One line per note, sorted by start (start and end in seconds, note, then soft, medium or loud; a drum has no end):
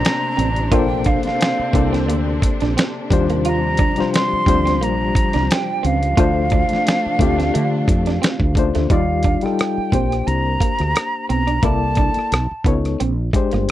0.00 8.86 C3 medium
0.00 0.20 A3 medium
0.00 0.72 A#3 medium
0.00 0.69 C4 medium
0.00 0.72 D4 medium
0.00 6.13 D4 medium
0.00 0.73 A4 medium
0.00 0.74 C5 loud
0.00 0.73 A#5 loud
0.05 snare loud
0.05 closed hi-hat medium
0.37 0.72 A1 medium
0.37 0.50 C4 medium
0.37 closed hi-hat medium
0.56 closed hi-hat soft
0.72 1.17 A#1 loud
0.72 1.61 A#3 loud
0.72 3.08 C4 medium
0.72 1.61 D4 medium
0.72 0.84 F4 medium
0.72 1.62 A4 medium
0.72 1.62 C5 loud
0.72 1.07 G5 medium
0.72 kick loud
0.72 closed hi-hat medium
1.04 1.19 D4 medium
1.04 1.24 F5 medium
1.04 kick loud
1.04 closed hi-hat medium
1.23 1.89 F5 medium
1.23 muted fretless electric bass stroke soft
1.23 closed hi-hat soft
1.27 snare soft
1.40 muted clean electric guitar stroke soft
1.40 snare loud
1.40 closed hi-hat medium
1.59 muted fretless electric bass stroke soft
1.73 2.09 C2 loud
1.73 2.92 A#3 medium
1.73 1.87 C4 medium
1.73 2.93 D4 medium
1.73 2.93 A4 medium
1.73 2.94 D5 medium
1.73 kick medium
1.73 closed hi-hat medium
1.93 2.03 C4 medium
1.93 snare soft
1.93 closed hi-hat soft
2.08 2.38 D2 medium
2.08 2.21 A#3 medium
2.08 closed hi-hat medium
2.42 muted clean electric guitar stroke soft
2.42 kick loud
2.42 closed hi-hat medium
2.60 2.75 A#1 medium
2.60 2.72 D4 medium
2.60 snare soft
2.60 closed hi-hat soft
2.77 2.90 C4 medium
2.77 snare loud
2.77 closed hi-hat medium
3.10 3.85 D#2 medium
3.10 8.86 F3 medium
3.10 3.84 G3 medium
3.10 6.14 G3 medium
3.10 3.84 D4 medium
3.10 3.85 F4 medium
3.10 3.85 C5 loud
3.10 muted clean electric guitar stroke soft
3.10 kick loud
3.10 closed hi-hat medium
3.30 3.40 A#3 medium
3.30 closed hi-hat soft
3.45 3.58 F4 medium
3.45 4.10 A#5 loud
3.45 closed hi-hat medium
3.77 3.92 D4 medium
3.77 kick medium
3.77 closed hi-hat medium
3.96 4.40 G3 medium
3.96 4.41 D4 medium
3.96 4.41 F4 medium
3.96 muted fretless electric bass stroke soft
3.96 closed hi-hat soft
4.00 4.42 C5 medium
4.00 snare soft
4.13 4.84 C6 loud
4.13 muted clean electric guitar stroke soft
4.13 snare loud
4.13 closed hi-hat medium
4.33 muted fretless electric bass stroke soft
4.46 4.82 D2 loud
4.46 5.65 G3 medium
4.46 4.59 C4 medium
4.46 5.65 D4 medium
4.46 5.66 F4 medium
4.46 5.66 C5 medium
4.46 kick medium
4.46 closed hi-hat medium
4.65 4.76 C4 medium
4.65 snare soft
4.65 closed hi-hat soft
4.81 5.11 A#1 medium
4.81 4.94 A#3 medium
4.81 5.53 A#5 loud
4.81 closed hi-hat medium
5.15 muted clean electric guitar stroke soft
5.15 kick loud
5.15 closed hi-hat medium
5.33 5.48 C2 medium
5.33 5.44 D4 medium
5.33 snare soft
5.33 closed hi-hat soft
5.51 5.87 G5 loud
5.51 snare loud
5.51 closed hi-hat medium
5.83 6.13 C#2 medium
5.83 5.96 C4 medium
5.83 8.57 F5 loud
5.83 closed hi-hat medium
6.03 closed hi-hat soft
6.17 6.63 D2 loud
6.17 7.06 A3 loud
6.17 8.87 A3 medium
6.17 8.88 D4 medium
6.17 7.07 D4 medium
6.17 6.30 F4 medium
6.17 7.07 F4 medium
6.17 7.08 C5 loud
6.17 kick loud
6.17 closed hi-hat medium
6.50 6.64 D4 medium
6.50 kick loud
6.50 closed hi-hat medium
6.69 muted fretless electric bass stroke soft
6.69 closed hi-hat soft
6.73 snare soft
6.86 muted clean electric guitar stroke soft
6.86 snare loud
6.86 closed hi-hat medium
7.06 muted fretless electric bass stroke soft
7.19 7.49 D2 medium
7.19 8.38 A3 medium
7.19 7.33 C4 medium
7.19 8.38 D4 medium
7.19 8.39 F4 medium
7.19 8.39 G4 medium
7.19 kick medium
7.19 closed hi-hat medium
7.39 7.49 C4 medium
7.39 snare soft
7.39 closed hi-hat soft
7.54 7.84 D3 loud
7.54 7.67 A3 medium
7.54 closed hi-hat medium
7.88 8.17 F2 medium
7.88 muted clean electric guitar stroke soft
7.88 kick medium
7.88 closed hi-hat medium
8.06 8.17 D4 medium
8.06 snare soft
8.06 closed hi-hat soft
8.22 8.34 C4 medium
8.22 snare loud
8.22 closed hi-hat medium
8.40 8.56 D2 medium
8.40 kick medium
8.55 8.72 C#2 medium
8.55 8.86 A3 medium
8.55 8.86 D4 medium
8.55 8.87 F4 medium
8.55 8.87 C5 medium
8.55 muted clean electric guitar stroke soft
8.55 kick medium
8.55 closed hi-hat medium
8.75 8.88 D2 medium
8.75 8.85 A3 medium
8.75 snare soft
8.75 closed hi-hat soft
8.90 9.35 D#2 medium
8.90 9.35 G3 medium
8.90 9.03 D#4 medium
8.90 9.35 D#4 medium
8.90 9.36 F4 medium
8.90 9.36 D5 loud
8.90 9.45 F5 medium
8.90 kick loud
8.90 closed hi-hat medium
9.23 9.37 D4 medium
9.23 kick medium
9.23 closed hi-hat medium
9.41 9.92 G3 medium
9.41 9.93 D#4 medium
9.41 9.93 F4 medium
9.41 10.28 G5 medium
9.41 muted fretless electric bass stroke soft
9.41 closed hi-hat soft
9.45 9.94 A4 medium
9.45 cross-stick soft
9.59 cross-stick medium
9.59 closed hi-hat medium
9.77 muted fretless electric bass stroke soft
9.92 10.22 A#1 medium
9.92 11.10 A#3 medium
9.92 10.05 C4 medium
9.92 11.11 D4 medium
9.92 11.11 G4 medium
9.92 11.12 C5 medium
9.92 kick medium
9.92 closed hi-hat medium
10.12 cross-stick soft
10.12 closed hi-hat soft
10.27 10.56 C2 medium
10.27 11.28 A#5 loud
10.27 closed hi-hat medium
10.60 10.73 A#3 medium
10.60 kick medium
10.60 closed hi-hat medium
10.79 10.93 D2 medium
10.79 cross-stick soft
10.79 closed hi-hat soft
10.95 muted clean electric guitar stroke soft
10.95 cross-stick loud
10.95 closed hi-hat medium
11.29 11.58 B1 medium
11.29 11.42 C4 medium
11.29 11.65 A#5 medium
11.29 closed hi-hat medium
11.47 11.58 D4 medium
11.47 closed hi-hat soft
11.63 12.08 C2 medium
11.63 12.31 A#3 medium
11.63 11.76 E4 medium
11.63 12.31 E4 medium
11.63 12.32 A4 medium
11.63 12.32 D5 medium
11.63 12.65 A5 medium
11.63 kick loud
11.63 closed hi-hat medium
11.95 12.10 D4 medium
11.95 kick medium
11.95 closed hi-hat medium
12.14 muted fretless electric bass stroke soft
12.14 closed hi-hat soft
12.19 cross-stick soft
12.32 12.48 B1 medium
12.32 cross-stick loud
12.32 closed hi-hat medium
12.51 muted fretless electric bass stroke soft
12.64 12.94 C#2 medium
12.64 12.99 B3 medium
12.64 12.78 B3 medium
12.64 13.00 D#4 medium
12.64 13.00 A4 medium
12.64 13.00 C#5 medium
12.64 kick medium
12.64 closed hi-hat medium
12.85 cross-stick soft
12.85 closed hi-hat soft
13.00 13.29 A#1 medium
13.00 13.12 C4 medium
13.00 closed hi-hat medium
13.33 13.71 G#3 medium
13.33 13.71 D4 medium
13.33 13.71 G4 medium
13.33 13.71 C5 medium
13.33 muted clean electric guitar stroke soft
13.33 kick medium
13.33 closed hi-hat medium
13.51 13.66 G1 medium
13.51 13.63 A#3 medium
13.51 cross-stick soft
13.51 closed hi-hat soft